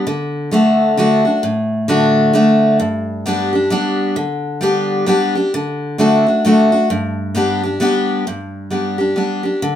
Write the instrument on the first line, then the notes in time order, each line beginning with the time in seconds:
steel-string acoustic guitar
0.07 D3
0.51 D3 A3 D4 F#4
0.97 D3 A3 D4 F#4
1.25 D4 F#4
1.43 A2
1.88 D3 A3 D4 F#4
2.33 D3 A3 D4 F#4
2.80 G2
3.26 G3 B3 D4 G4
3.53 D4 G4
3.70 G3 B3 D4 G4
4.16 D3
4.61 G3 B3 D4 G4
5.06 G3 B3 D4 G4
5.35 D4 G4
5.54 D3
5.98 D3 A3 D4 F#4
6.27 D4 F#4
6.45 D3 A3 D4 F#4
6.72 D4 F#4
6.90 G2
7.35 G3 B3 D4 G4
7.63 D4 G4
7.80 G3 B3 D4 G4
8.27 G2
8.70 G3 B3 D4 G4
8.98 D4 G4
9.16 G3 B3 D4 G4
9.43 D4 G4
9.62 D3